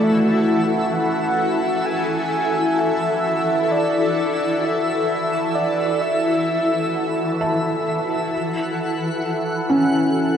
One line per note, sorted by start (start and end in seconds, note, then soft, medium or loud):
0.00 10.37 E3 medium
0.00 2.93 A3 medium
0.00 10.37 E4 medium
0.00 10.37 F#4 medium
0.00 10.37 A4 medium
0.00 8.33 E5 medium
0.00 0.94 E5 medium
0.00 8.33 E6 medium
0.93 1.87 F#5 loud
1.86 2.80 G#5 loud
2.79 3.73 E5 medium
3.71 4.67 D5 medium
4.65 5.56 E5 loud
5.55 6.03 D5 medium
6.01 7.40 E5 medium
7.41 10.37 E5 medium
7.41 10.37 A5 medium
8.33 10.37 F#5 medium
8.33 10.37 F#6 medium
9.69 10.37 C#4 medium